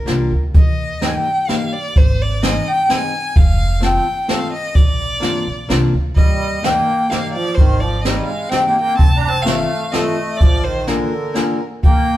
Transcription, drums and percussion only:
0.07 snare medium
0.07 closed hi-hat soft
0.54 kick medium
0.54 closed hi-hat soft
1.02 snare medium
1.02 closed hi-hat soft
1.49 snare medium
1.49 closed hi-hat soft
1.96 kick medium
1.96 closed hi-hat soft
2.43 snare medium
2.43 closed hi-hat soft
2.90 snare medium
2.90 closed hi-hat medium
3.36 kick medium
3.36 closed hi-hat soft
3.83 snare medium
3.83 closed hi-hat soft
4.29 snare medium
4.29 closed hi-hat soft
4.75 kick medium
4.75 closed hi-hat soft
5.22 snare medium
5.22 closed hi-hat soft
5.70 snare medium
5.70 closed hi-hat soft
6.16 kick medium
6.16 closed hi-hat soft
6.64 snare medium
6.64 closed hi-hat soft
7.11 snare medium
7.11 closed hi-hat soft
7.58 kick medium
7.58 closed hi-hat soft
8.05 snare medium
8.05 closed hi-hat soft
8.51 snare medium
8.51 closed hi-hat soft
8.99 kick medium
8.99 closed hi-hat soft
9.46 snare medium
9.46 closed hi-hat soft
9.93 snare medium
9.93 closed hi-hat soft
10.40 kick medium
10.40 closed hi-hat soft
10.87 snare medium
10.87 closed hi-hat soft
11.35 snare medium
11.35 closed hi-hat soft
11.83 kick medium
11.83 closed hi-hat soft

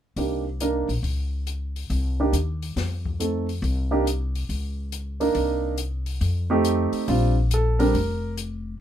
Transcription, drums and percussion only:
0.17 open hi-hat soft
0.60 closed hi-hat soft
0.89 open hi-hat soft
1.04 open hi-hat soft
1.47 closed hi-hat soft
1.76 open hi-hat soft
1.90 open hi-hat soft
2.33 closed hi-hat soft
2.62 open hi-hat soft
2.77 snare soft
2.77 open hi-hat soft
3.06 kick soft
3.20 closed hi-hat soft
3.49 open hi-hat soft
3.64 open hi-hat soft
4.07 closed hi-hat soft
4.35 open hi-hat soft
4.50 open hi-hat soft
4.92 closed hi-hat soft
5.21 open hi-hat soft
5.35 open hi-hat soft
5.78 closed hi-hat soft
6.06 open hi-hat soft
6.21 open hi-hat soft
6.65 closed hi-hat soft
6.93 open hi-hat soft
7.08 open hi-hat soft
7.51 closed hi-hat medium
7.80 open hi-hat soft
7.95 open hi-hat soft
8.37 closed hi-hat soft

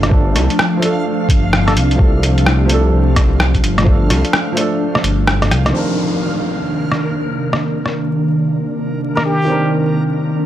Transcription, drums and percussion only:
0.03 cross-stick medium
0.03 closed hi-hat soft
0.11 kick loud
0.36 cross-stick soft
0.36 closed hi-hat medium
0.50 closed hi-hat soft
0.59 cross-stick loud
0.82 closed hi-hat soft
1.29 kick loud
1.29 closed hi-hat soft
1.53 cross-stick medium
1.68 cross-stick soft
1.68 closed hi-hat soft
1.77 closed hi-hat medium
1.91 closed hi-hat soft
1.99 kick loud
2.23 closed hi-hat medium
2.38 closed hi-hat soft
2.46 cross-stick medium
2.70 closed hi-hat medium
3.16 kick loud
3.16 cross-stick soft
3.16 closed hi-hat soft
3.40 cross-stick loud
3.54 kick medium
3.54 closed hi-hat soft
3.64 closed hi-hat medium
3.78 cross-stick medium
3.78 closed hi-hat soft
3.87 kick loud
4.10 cross-stick soft
4.10 closed hi-hat medium
4.25 closed hi-hat soft
4.33 cross-stick loud
4.57 closed hi-hat medium
4.95 cross-stick medium
5.04 closed hi-hat medium
5.27 cross-stick loud
5.42 cross-stick medium
5.42 closed hi-hat soft
5.51 cross-stick medium
5.51 closed hi-hat medium
5.66 cross-stick medium
5.66 closed hi-hat soft
6.92 cross-stick soft
7.53 cross-stick medium
7.86 cross-stick soft
9.17 cross-stick soft

